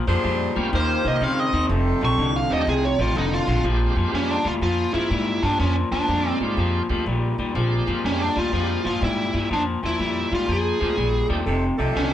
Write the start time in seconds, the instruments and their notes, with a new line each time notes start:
0.07 upright bass F2, clean electric guitar A#2 F3, saxophone section D4 G4 G#4 C5
0.24 upright bass F2, clean electric guitar A#2 G3
0.56 upright bass D2, clean electric guitar A#2 G3, tonewheel organ A#3 C4 C#4 F4 G4
0.72 upright bass D#2, clean electric guitar D#3 A#3, saxophone section C#4 F4 G4 C5, lead electric guitar C5
1.04 upright bass C3, clean electric guitar D#3 A#3, lead electric guitar D#5
1.21 upright bass C#3, clean electric guitar D#3 C4, lead electric guitar F5
1.40 lead electric guitar D#5
1.53 upright bass D#2, clean electric guitar D#3 C4
1.69 upright bass F1, clean electric guitar F2 C3, saxophone section D4 D#4 G4 A4
2.01 upright bass A#1, clean electric guitar F2 C3, lead electric guitar C#6
2.18 upright bass C2, clean electric guitar F2 D3
2.36 lead electric guitar F5
2.50 upright bass D#2, clean electric guitar F2 D3, tonewheel organ A3 C4 D4 D#4 G4, lead electric guitar D#5
2.67 upright bass C2, clean electric guitar F2 C3, lead electric guitar G#4
2.85 lead electric guitar C#5
2.98 upright bass A1, clean electric guitar F2 C3, lead electric guitar F4
3.15 upright bass F1, clean electric guitar F2 D3, lead electric guitar D#4
3.34 lead electric guitar F4
3.47 upright bass A#1, clean electric guitar F2 D3
3.64 upright bass A#1, clean electric guitar A#2 F3, tonewheel organ G#3 C4 D4 F4 G4
3.96 upright bass F2, clean electric guitar A#2 F3
4.12 upright bass F2, clean electric guitar A#2 G3, lead electric guitar C#4
4.31 lead electric guitar D4
4.44 upright bass D2, clean electric guitar A#2 G3, lead electric guitar F4
4.61 upright bass F2, clean electric guitar A#2 F3, lead electric guitar F4
4.93 upright bass G2, clean electric guitar A#2 F3, tonewheel organ G#3 C4 D4 F4 G#4, lead electric guitar E4
5.10 upright bass G#2, clean electric guitar A#2 G3
5.43 upright bass G2, clean electric guitar A#2 G3, lead electric guitar D4
5.60 upright bass F2, clean electric guitar A#2 F3, lead electric guitar C#4
5.92 upright bass D#2, clean electric guitar A#2 F3, lead electric guitar D4
6.07 upright bass F2, clean electric guitar A#2 G3, tonewheel organ G#3 C4 D4 F4 G4
6.40 upright bass G#2, clean electric guitar A#2 G3
6.57 upright bass F2, clean electric guitar A#2 F3
6.89 upright bass D2, clean electric guitar A#2 F3, tonewheel organ G#3 C4 D4 F4 G4
7.06 upright bass A#1, clean electric guitar A#2 G3
7.38 upright bass D#2, clean electric guitar A#2 G3
7.55 upright bass A#1, clean electric guitar A#2 F3, tonewheel organ G#3 C4 D4 F4 G4
7.87 upright bass F2, clean electric guitar A#2 F3
8.04 upright bass F2, clean electric guitar A#2 G3, lead electric guitar C#4
8.22 lead electric guitar D4
8.36 upright bass D2, clean electric guitar A#2 G3, lead electric guitar F4
8.53 upright bass F2, clean electric guitar A#2 F3, tonewheel organ G#3 C4 D4 F4 G4
8.84 upright bass G2, clean electric guitar A#2 F3, lead electric guitar F4
9.01 upright bass G#2, clean electric guitar A#2 G3, lead electric guitar E4
9.33 upright bass G2, clean electric guitar A#2 G3
9.51 upright bass F2, clean electric guitar A#2 F3, lead electric guitar D4
9.83 upright bass D#2, clean electric guitar A#2 F3, lead electric guitar E4
9.99 upright bass F2, clean electric guitar A#2 G3
10.32 upright bass G#2, clean electric guitar A#2 G3, lead electric guitar F4
10.48 upright bass F2, clean electric guitar A#2 F3
10.52 lead electric guitar G#4
10.80 upright bass D2, clean electric guitar A#2 F3, tonewheel organ G#3 C4 D4 F4 G4
10.97 upright bass A#1, clean electric guitar A#2 G3
11.29 upright bass D#2, clean electric guitar A#2 G3, tonewheel organ A3 C4 D4 D#4 G4
11.46 upright bass F1, clean electric guitar F2 C3, saxophone section D4 D#4 G4 A4
11.78 upright bass C2, clean electric guitar F2 C3, saxophone section D4 D#4 G4 A4
11.95 upright bass C2, clean electric guitar F2 D3, lead electric guitar C#4